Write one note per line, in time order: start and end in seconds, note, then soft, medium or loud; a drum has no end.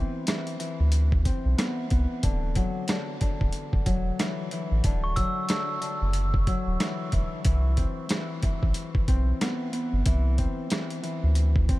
0.00 0.27 E3 loud
0.00 1.32 B3 medium
0.00 1.25 C4 medium
0.27 0.58 E3 medium
0.27 cross-stick loud
0.27 snare loud
0.27 closed hi-hat loud
0.47 closed hi-hat medium
0.59 2.28 E3 medium
0.59 closed hi-hat medium
0.80 1.30 D2 medium
0.92 closed hi-hat medium
1.12 kick loud
1.25 4.26 C4 medium
1.25 kick medium
1.25 closed hi-hat medium
1.45 1.55 B1 loud
1.58 1.90 B3 medium
1.58 cross-stick loud
1.58 snare loud
1.58 closed hi-hat medium
1.90 2.06 C2 loud
1.90 5.01 B3 medium
1.90 kick loud
1.90 closed hi-hat medium
2.23 2.63 D1 loud
2.23 2.87 D3 medium
2.23 kick loud
2.23 closed hi-hat loud
2.55 2.94 F#3 medium
2.55 kick medium
2.55 closed hi-hat medium
2.88 3.20 D3 medium
2.88 cross-stick loud
2.88 snare loud
2.88 closed hi-hat loud
3.21 4.83 D3 medium
3.21 kick loud
3.21 closed hi-hat medium
3.41 3.51 D1 medium
3.41 kick medium
3.53 closed hi-hat medium
3.73 3.78 E1 medium
3.73 kick loud
3.86 4.11 E1 medium
3.86 4.89 F#3 medium
3.86 kick medium
3.86 closed hi-hat medium
4.19 4.51 E3 medium
4.19 cross-stick loud
4.19 snare loud
4.19 closed hi-hat medium
4.51 4.89 E3 medium
4.51 closed hi-hat medium
4.71 4.81 A1 loud
4.84 5.24 D1 loud
4.84 5.48 D3 medium
4.84 kick loud
4.84 closed hi-hat loud
5.04 5.15 C#6 medium
5.16 5.54 F#3 medium
5.16 6.30 E6 medium
5.16 kick medium
5.16 closed hi-hat medium
5.49 5.80 D3 medium
5.49 cross-stick loud
5.49 snare loud
5.49 closed hi-hat loud
5.82 7.50 D3 medium
5.82 closed hi-hat medium
6.02 6.52 F#1 medium
6.13 closed hi-hat medium
6.34 kick loud
6.47 7.50 F#3 medium
6.47 kick medium
6.47 closed hi-hat medium
6.67 6.77 D1 loud
6.80 7.12 E3 medium
6.80 cross-stick loud
6.80 snare loud
6.80 closed hi-hat medium
7.12 7.28 E1 loud
7.12 7.44 E3 medium
7.12 kick medium
7.12 closed hi-hat medium
7.45 7.85 C2 loud
7.45 8.09 E3 loud
7.45 kick loud
7.45 closed hi-hat loud
7.77 9.07 C4 medium
7.77 kick loud
7.77 closed hi-hat medium
8.09 8.43 E3 medium
8.09 cross-stick loud
8.09 snare loud
8.09 closed hi-hat loud
8.42 10.05 E3 medium
8.42 kick loud
8.42 closed hi-hat medium
8.63 8.73 A1 medium
8.63 kick medium
8.74 closed hi-hat medium
8.95 9.00 B1 soft
8.95 kick loud
9.08 9.33 B1 loud
9.08 10.38 C4 medium
9.08 kick medium
9.08 closed hi-hat medium
9.41 9.72 B3 medium
9.41 cross-stick medium
9.41 snare loud
9.41 closed hi-hat medium
9.72 11.75 B3 medium
9.72 closed hi-hat medium
9.93 10.03 G1 loud
10.06 10.46 C2 loud
10.06 10.70 E3 loud
10.06 kick loud
10.06 closed hi-hat loud
10.38 11.69 C4 medium
10.38 kick loud
10.38 closed hi-hat medium
10.70 11.02 E3 medium
10.70 cross-stick loud
10.70 snare loud
10.70 closed hi-hat loud
10.90 closed hi-hat medium
11.03 11.79 E3 medium
11.03 closed hi-hat medium
11.23 11.73 D2 medium
11.35 closed hi-hat medium
11.56 kick loud
11.69 11.79 C4 medium
11.69 kick medium
11.69 closed hi-hat medium